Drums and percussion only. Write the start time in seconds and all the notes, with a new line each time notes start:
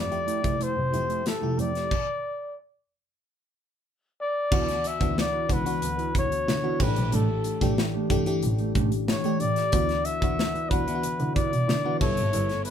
0.12 closed hi-hat
0.28 closed hi-hat
0.44 kick, closed hi-hat
0.61 closed hi-hat
0.94 closed hi-hat
1.10 closed hi-hat
1.26 snare, closed hi-hat
1.59 closed hi-hat
1.75 snare, closed hi-hat
1.91 kick, crash
4.52 kick, crash
4.68 snare, closed hi-hat
4.84 closed hi-hat
5.01 kick, closed hi-hat
5.18 snare
5.49 kick, closed hi-hat
5.66 closed hi-hat
5.82 closed hi-hat
5.99 closed hi-hat
6.15 kick, closed hi-hat
6.32 closed hi-hat
6.48 snare
6.80 kick, crash
6.96 closed hi-hat
7.12 closed hi-hat
7.44 closed hi-hat
7.61 kick, snare, closed hi-hat
7.78 snare
8.10 kick, closed hi-hat
8.26 closed hi-hat
8.43 closed hi-hat
8.58 closed hi-hat
8.75 kick, closed hi-hat
8.92 closed hi-hat
9.08 snare
9.24 closed hi-hat
9.40 closed hi-hat
9.56 snare, closed hi-hat
9.72 kick, closed hi-hat
9.89 snare, closed hi-hat
10.05 closed hi-hat
10.22 kick, closed hi-hat
10.39 snare
10.55 closed hi-hat
10.71 kick, closed hi-hat
10.88 closed hi-hat
11.03 closed hi-hat
11.20 closed hi-hat
11.36 kick, closed hi-hat
11.53 closed hi-hat
11.69 snare
12.01 kick, crash
12.17 closed hi-hat
12.33 closed hi-hat
12.49 snare, closed hi-hat
12.65 closed hi-hat